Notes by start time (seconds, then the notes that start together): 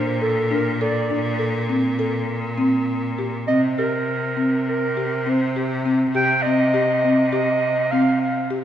Already playing: A#2 D4 C5
0.21 A4
0.51 D4 A#4
0.81 A4 D5
1.10 D4
1.39 A4
1.69 C4
1.99 A4
2.58 C4
3.18 G4
3.48 C3 C4 D#5
3.78 G4 A#4
4.37 C4
4.69 A#4
4.97 G4
5.26 C4 C5
5.56 G4 C5
5.85 C4
6.15 G4 G5
6.42 C4 D#5
6.74 G4
7.04 C4
7.31 G4 D#5
7.91 C4 F5
8.21 F5
8.51 G4